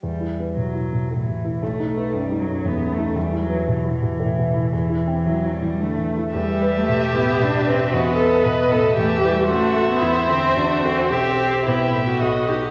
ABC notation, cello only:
X:1
M:3/4
L:1/16
Q:1/4=114
K:Em
V:1 name="Cello"
G,4 F,4 E,4 | A,4 G,2 F,2 B,2 A,2 | G,2 F,2 E,2 E,6- | E,4 F,2 G,2 A,2 z2 |
G,3 A,3 B,2 D2 C2 | B,6 B,2 A,2 G,2 | A,3 B,3 C2 D2 C2 | C4 B,6 z2 |]